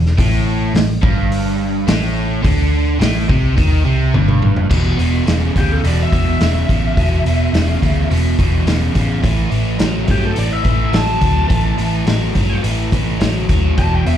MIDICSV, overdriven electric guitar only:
0, 0, Header, 1, 2, 480
1, 0, Start_track
1, 0, Key_signature, 1, "minor"
1, 0, Tempo, 566572
1, 162, Time_signature, 4, 2, 24, 8
1, 12009, End_track
2, 0, Start_track
2, 0, Title_t, "Overdriven electric guitar"
2, 0, Program_c, 0, 29
2, 0, Note_on_c, 0, 40, 71
2, 114, Note_off_c, 0, 40, 0
2, 150, Note_on_c, 0, 45, 111
2, 622, Note_off_c, 0, 45, 0
2, 632, Note_on_c, 0, 45, 75
2, 827, Note_off_c, 0, 45, 0
2, 860, Note_on_c, 0, 43, 96
2, 1579, Note_off_c, 0, 43, 0
2, 1586, Note_on_c, 0, 45, 98
2, 2051, Note_off_c, 0, 45, 0
2, 2054, Note_on_c, 0, 50, 110
2, 2536, Note_off_c, 0, 50, 0
2, 2539, Note_on_c, 0, 45, 97
2, 2778, Note_off_c, 0, 45, 0
2, 2786, Note_on_c, 0, 48, 101
2, 3017, Note_off_c, 0, 48, 0
2, 3020, Note_on_c, 0, 51, 103
2, 3253, Note_off_c, 0, 51, 0
2, 3257, Note_on_c, 0, 48, 86
2, 3496, Note_off_c, 0, 48, 0
2, 3499, Note_on_c, 0, 43, 98
2, 3975, Note_off_c, 0, 43, 0
2, 3978, Note_on_c, 0, 40, 84
2, 3980, Note_on_c, 0, 47, 92
2, 4200, Note_off_c, 0, 40, 0
2, 4201, Note_off_c, 0, 47, 0
2, 4215, Note_on_c, 0, 40, 77
2, 4219, Note_on_c, 0, 47, 92
2, 4439, Note_off_c, 0, 40, 0
2, 4440, Note_off_c, 0, 47, 0
2, 4458, Note_on_c, 0, 40, 81
2, 4461, Note_on_c, 0, 49, 91
2, 4680, Note_off_c, 0, 40, 0
2, 4682, Note_off_c, 0, 49, 0
2, 4701, Note_on_c, 0, 40, 58
2, 4708, Note_on_c, 0, 49, 80
2, 4921, Note_off_c, 0, 40, 0
2, 4925, Note_off_c, 0, 49, 0
2, 4945, Note_on_c, 0, 40, 73
2, 4950, Note_on_c, 0, 47, 84
2, 5164, Note_off_c, 0, 40, 0
2, 5166, Note_off_c, 0, 47, 0
2, 5186, Note_on_c, 0, 40, 63
2, 5189, Note_on_c, 0, 47, 62
2, 5404, Note_off_c, 0, 40, 0
2, 5405, Note_off_c, 0, 47, 0
2, 5427, Note_on_c, 0, 40, 69
2, 5434, Note_on_c, 0, 49, 86
2, 5644, Note_off_c, 0, 40, 0
2, 5648, Note_off_c, 0, 49, 0
2, 5668, Note_on_c, 0, 40, 73
2, 5672, Note_on_c, 0, 49, 81
2, 5885, Note_off_c, 0, 40, 0
2, 5887, Note_off_c, 0, 49, 0
2, 5906, Note_on_c, 0, 40, 83
2, 5911, Note_on_c, 0, 47, 84
2, 6124, Note_off_c, 0, 40, 0
2, 6127, Note_off_c, 0, 47, 0
2, 6153, Note_on_c, 0, 40, 77
2, 6154, Note_on_c, 0, 47, 86
2, 6368, Note_off_c, 0, 40, 0
2, 6368, Note_off_c, 0, 47, 0
2, 6387, Note_on_c, 0, 40, 85
2, 6387, Note_on_c, 0, 49, 88
2, 6605, Note_off_c, 0, 40, 0
2, 6605, Note_off_c, 0, 49, 0
2, 6626, Note_on_c, 0, 40, 68
2, 6626, Note_on_c, 0, 49, 82
2, 6844, Note_off_c, 0, 40, 0
2, 6845, Note_off_c, 0, 49, 0
2, 6865, Note_on_c, 0, 40, 72
2, 6868, Note_on_c, 0, 47, 84
2, 7084, Note_off_c, 0, 40, 0
2, 7086, Note_off_c, 0, 47, 0
2, 7107, Note_on_c, 0, 40, 69
2, 7112, Note_on_c, 0, 47, 71
2, 7325, Note_off_c, 0, 40, 0
2, 7328, Note_off_c, 0, 47, 0
2, 7340, Note_on_c, 0, 40, 80
2, 7345, Note_on_c, 0, 49, 85
2, 7562, Note_off_c, 0, 40, 0
2, 7564, Note_off_c, 0, 49, 0
2, 7578, Note_on_c, 0, 40, 77
2, 7583, Note_on_c, 0, 49, 77
2, 7801, Note_off_c, 0, 40, 0
2, 7803, Note_off_c, 0, 49, 0
2, 7816, Note_on_c, 0, 45, 80
2, 7820, Note_on_c, 0, 52, 90
2, 8040, Note_off_c, 0, 45, 0
2, 8042, Note_off_c, 0, 52, 0
2, 8054, Note_on_c, 0, 45, 73
2, 8055, Note_on_c, 0, 52, 79
2, 8279, Note_off_c, 0, 45, 0
2, 8280, Note_off_c, 0, 52, 0
2, 8290, Note_on_c, 0, 45, 79
2, 8294, Note_on_c, 0, 54, 92
2, 8517, Note_off_c, 0, 45, 0
2, 8520, Note_off_c, 0, 54, 0
2, 8532, Note_on_c, 0, 45, 72
2, 8535, Note_on_c, 0, 54, 70
2, 8759, Note_off_c, 0, 45, 0
2, 8760, Note_off_c, 0, 54, 0
2, 8771, Note_on_c, 0, 45, 75
2, 8776, Note_on_c, 0, 52, 82
2, 8998, Note_off_c, 0, 45, 0
2, 9001, Note_off_c, 0, 52, 0
2, 9015, Note_on_c, 0, 45, 65
2, 9022, Note_on_c, 0, 52, 67
2, 9241, Note_off_c, 0, 45, 0
2, 9244, Note_off_c, 0, 52, 0
2, 9255, Note_on_c, 0, 45, 79
2, 9258, Note_on_c, 0, 54, 84
2, 9481, Note_off_c, 0, 45, 0
2, 9482, Note_off_c, 0, 54, 0
2, 9494, Note_on_c, 0, 45, 72
2, 9496, Note_on_c, 0, 54, 74
2, 9716, Note_off_c, 0, 45, 0
2, 9721, Note_off_c, 0, 54, 0
2, 9725, Note_on_c, 0, 52, 78
2, 9726, Note_on_c, 0, 45, 76
2, 9956, Note_off_c, 0, 52, 0
2, 9957, Note_off_c, 0, 45, 0
2, 9977, Note_on_c, 0, 45, 69
2, 9981, Note_on_c, 0, 52, 82
2, 10202, Note_off_c, 0, 45, 0
2, 10204, Note_off_c, 0, 52, 0
2, 10222, Note_on_c, 0, 45, 82
2, 10225, Note_on_c, 0, 54, 78
2, 10445, Note_off_c, 0, 45, 0
2, 10447, Note_off_c, 0, 54, 0
2, 10461, Note_on_c, 0, 45, 62
2, 10468, Note_on_c, 0, 54, 78
2, 10685, Note_off_c, 0, 45, 0
2, 10689, Note_off_c, 0, 54, 0
2, 10700, Note_on_c, 0, 45, 76
2, 10704, Note_on_c, 0, 52, 79
2, 10925, Note_off_c, 0, 45, 0
2, 10927, Note_off_c, 0, 52, 0
2, 10947, Note_on_c, 0, 45, 60
2, 10952, Note_on_c, 0, 52, 65
2, 11169, Note_off_c, 0, 45, 0
2, 11171, Note_off_c, 0, 52, 0
2, 11180, Note_on_c, 0, 45, 76
2, 11182, Note_on_c, 0, 54, 84
2, 11406, Note_off_c, 0, 45, 0
2, 11407, Note_off_c, 0, 54, 0
2, 11424, Note_on_c, 0, 45, 75
2, 11425, Note_on_c, 0, 54, 80
2, 11648, Note_off_c, 0, 45, 0
2, 11649, Note_off_c, 0, 54, 0
2, 11667, Note_on_c, 0, 40, 83
2, 11671, Note_on_c, 0, 47, 83
2, 11890, Note_off_c, 0, 40, 0
2, 11892, Note_off_c, 0, 47, 0
2, 11914, Note_on_c, 0, 40, 87
2, 11914, Note_on_c, 0, 47, 83
2, 12009, Note_off_c, 0, 40, 0
2, 12009, Note_off_c, 0, 47, 0
2, 12009, End_track
0, 0, End_of_file